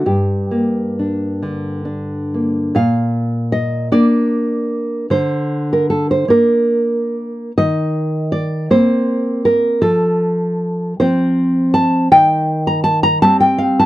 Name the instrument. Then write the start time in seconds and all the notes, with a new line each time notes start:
nylon-string guitar
0.06 G2 G4
0.51 A#3
0.99 D4
1.43 D3
1.85 D4
2.34 A#3
2.75 A#2 F5
3.52 D#5
3.92 A#3 D4 D5
5.10 D3 C5
5.73 A#4
5.90 A4
6.11 C5
6.28 A#3 D4 A#4
7.58 D#3 D#5
8.32 D5
8.70 A#3 C4 C5
9.45 A#4
9.82 F3 A4
11.00 F3 C4 C5
11.74 A5
12.11 D#3 G5
12.67 A#5
12.84 A5
13.03 A#5
13.22 G3 C4 A5
13.40 G5
13.58 F5
13.79 A5